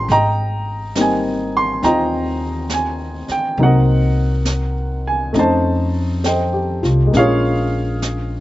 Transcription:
Already playing: G3 F4 C#5 G5 A5 A#5 C6
0.09 G#1 D#5 G5 A#5, brush sweep, snare
0.95 G3 A#3 C4 D#4, snare, hi-hat pedal
1.01 G#5
1.57 C6
1.82 D#2 C4 D#4 F4 D#5 G5 A#5, brush sweep, snare
2.70 G#5, snare, hi-hat pedal
3.28 G5, muted upright bass stroke, snare
3.57 C2 F#3 A#3 C4 D#4, brush sweep
3.63 A#4 D#5 F#5
4.45 snare, hi-hat pedal
5.07 G#5
5.33 F2 A3 C4 C#4 D#4, brush sweep, snare
5.39 C5 D#5 A5
6.24 A4 D#5 G5, snare, hi-hat pedal
6.28 C5
6.53 G4
6.83 C2 F4, snare
7.07 G#3
7.11 A#1 A#3 C#4, brush sweep, snare
7.17 F4 G#4 C#5 F5
8.02 snare, hi-hat pedal

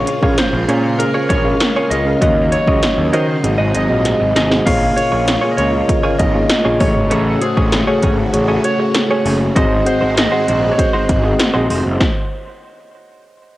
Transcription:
Already playing: A#2 C#3 G#3 A#3 C#4 F4 G#4 A#4 C#5 F5
0.07 muted clean electric guitar stroke, closed hi-hat
0.21 A#1 C#4 F4 G#4 A#4 C#5 F5, kick
0.38 C5, snare, closed hi-hat
0.53 A#1, muted clean electric guitar stroke
0.68 A#2 C#4 F4 G#4 A#4 C#5 F5, closed hi-hat
0.84 muted clean electric guitar stroke
0.98 C#4 G#4 A#4 F5, muted clean electric guitar stroke, closed hi-hat
1.14 C#4 F4 G#4 C#5
1.29 A#1 C#4 F4 G#4 C#5, kick, closed hi-hat
1.44 C#4 G#4 A#4 F5, muted clean electric guitar stroke
1.60 muted clean electric guitar stroke, snare, closed hi-hat
1.76 C#4 F4 G#4 C#5
1.90 C#2 C#4 F4 G#4 C#5 D#5, closed hi-hat
2.05 C#4 G#4 A#4 F5, muted clean electric guitar stroke
2.20 D#2 D#3 F#3 C#4 D#4 F#4 A#4 D#5, kick, closed hi-hat
2.38 muted clean electric guitar stroke
2.52 C#5, muted clean electric guitar stroke, closed hi-hat
2.66 C#2 C#4 F#4 A#4 D#5, kick
2.83 snare, closed hi-hat
2.98 D#2, muted clean electric guitar stroke
3.12 D#3 C#4 F#4 A#4 C5 D#5, closed hi-hat
3.28 muted clean electric guitar stroke
3.43 G#1 G#2 C3 G#3 C4 F#4 G#4 D#5, muted clean electric guitar stroke, closed hi-hat
3.58 G#1 C4 F#4 G#4 D#5
3.73 G#1 C4 F#4 G#4 D#5, closed hi-hat
3.89 A#1 C4 F#4 G#4 D#5, muted clean electric guitar stroke
4.05 snare, closed hi-hat
4.20 G#1, muted clean electric guitar stroke
4.36 G#1 C4 F#4 G#4 D#5, snare, closed hi-hat
4.50 C4 F#4 G#4 D#5, muted clean electric guitar stroke, snare
4.65 A#1 A#2 C#3 A#3 F4 G#4 C#5 F5, kick, closed hi-hat, crash
4.96 A#3 F4 G#4 C#5, muted clean electric guitar stroke, closed hi-hat
5.12 A#1 A#3 F4 G#4 C#5
5.27 muted clean electric guitar stroke, snare, closed hi-hat
5.41 A#3 F4 G#4 C#5
5.51 D#5
5.57 C#2 A#3 F4 G#4 C#5, closed hi-hat
5.72 muted clean electric guitar stroke
5.88 A#3 F4 G#4 A#4, muted clean electric guitar stroke, kick, closed hi-hat
6.03 A#3 F4 G#4 C#5
6.18 G#1 D#5, muted clean electric guitar stroke, kick, closed hi-hat
6.34 A#3 F4 G#4 C#5, muted clean electric guitar stroke
6.49 muted clean electric guitar stroke, snare, closed hi-hat
6.64 A#1 A#3 F4 G#4 C#5
6.80 A1 A2 A3 C#4 F#4 G#4 C#5, kick, open hi-hat
6.95 G#1, muted clean electric guitar stroke
7.10 A1 A3 C#4 G#4 A4 C#5, closed hi-hat
7.41 A3 F#4 G#4 C5, muted clean electric guitar stroke, closed hi-hat
7.57 A1 A3 C#4 G#4 C#5, kick
7.72 muted clean electric guitar stroke, snare, closed hi-hat
7.87 A3 C#4 F#4 G#4 C#5
8.03 G#1 A3 C#4 G#4 C#5, kick, closed hi-hat
8.18 muted clean electric guitar stroke
8.33 A1 A3 F#4 G#4 C#5, muted clean electric guitar stroke, closed hi-hat
8.48 A3 C#4 G#4 C#5
8.64 C#5, muted clean electric guitar stroke, closed hi-hat
8.79 A3 F#4 G#4 C#5, muted clean electric guitar stroke
8.95 muted clean electric guitar stroke, snare, closed hi-hat
9.09 A3 C#4 F#4 G#4 C#5
9.26 F#1 A3 C#4 G#4 C#5, open hi-hat
9.41 muted clean electric guitar stroke
9.55 G#1 G#2 D#3 G#3 C4 D#4 F#4 G#4 C5 D#5, kick, closed hi-hat
9.85 C4 F#4 G#4 C5 F#5, muted clean electric guitar stroke, closed hi-hat
10.01 G#1 G#3 D#4 F#4 C5
10.16 D#5, muted clean electric guitar stroke, snare, closed hi-hat
10.31 G#3 C4 D#4 F#4 G#4 C5 F#5
10.47 A#1 G#3 D#4 F#4 C5, closed hi-hat
10.62 muted clean electric guitar stroke
10.71 C#5
10.78 C4 F#4 G#4 C5 D#5, muted clean electric guitar stroke, kick, closed hi-hat
10.93 G#3 D#4 F#4 C5
11.09 G#1, kick, closed hi-hat
11.24 C4 F#4 G#4 D#5, muted clean electric guitar stroke
11.39 muted clean electric guitar stroke, snare, closed hi-hat
11.54 A#1 G#3 C4 D#4 F#4 G#4 C5 D#5
11.69 F1 G#3 D#4 F#4 C5, open hi-hat
11.85 F#1, muted clean electric guitar stroke
12.00 kick, snare

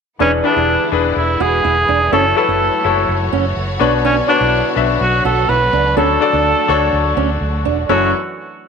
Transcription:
0.19 E1 D3 E3 G#3 B3 C#4 D4 E4 G#4 B4
0.44 D4 E4 G4 B4
0.51 G#4
0.56 E1 E4
0.92 E1 D4 E4 G#4 B4
1.16 E1 E4
1.40 E1 F#4 G#4
1.64 E1 E4
1.88 E1 D4
2.12 F#1 F#3 A3 C#4 E4 F#4 A4 C#5
2.36 E4 F#4 A4 B4
2.48 F#1 E4
2.84 F#1 E4 F#4 A4 C#5
3.09 F#1
3.33 F#1 C#4
3.57 F#1
3.79 B1 B2 D3 F#3 B3 D4 F#4 B4 C#5
4.05 C#4 D4
4.28 D4 F#4 B4 C#5
4.41 B1 E4
4.76 B1 D4 F#4 B4 E5
5.01 B1 F#4
5.25 B1 F#4 A4
5.49 B1 E4 B4
5.73 C#2 D4
5.96 D2 D3 A3 C#4 D4 F#4 A4 C#5
6.20 D4 F#4 A4 D5
6.33 D2 D4
6.68 D2 D4 F#4 A4 C#5
6.93 D2
7.17 D2 C#4
7.41 D2
7.65 E1 D4
7.89 F#1 F#2 E3 F#3 A3 C#4 E4 F#4 A4 C#5

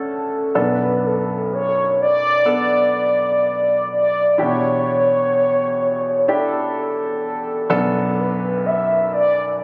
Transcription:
Already playing: D2 A2 C#4 D4 F#4 A4
0.55 B1 F#2 B3 D4 A4 B4
1.06 A4
1.53 C#5
2.01 D5
2.45 B3 D4 A4
3.91 D5
4.38 E2 B2 D4 E4 G4 C#5
6.28 D4 E4 G4 A4
7.70 B1 F#2 B3 D4 A4
8.20 B4
8.66 E5
9.12 D5

